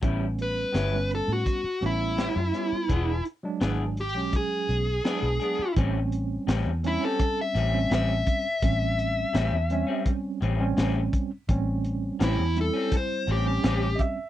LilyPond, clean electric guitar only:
\new Staff \with { instrumentName = "Clean electric guitar" } { \time 4/4 \key a \mixolydian \tempo 4 = 84 <a, g cis' e'>16 r8. <a, g cis' e'>16 r4. r16 <a, g cis' e'>16 r16 <g cis' e'>16 r16 | <e b d' gis'>16 r8. <e b d' gis'>16 r4. r16 <e b d' gis'>16 r16 <b d' gis'>16 r16 | <a, g bis cis'>16 r8. <a, g bis cis'>16 r8 <g bis cis'>16 r8 <a, g bis cis'>16 r16 <a, g bis cis'>16 r8. | r4 <a, g bis cis'>16 r8 <g bis cis'>16 r8 <a, g bis cis'>16 r16 <a, g bis cis'>16 r8. |
r4 <a, g bis cis'>16 r8 <g bis cis'>16 r8 <a, g bis cis'>16 r16 <a, g bis cis'>16 r8. | }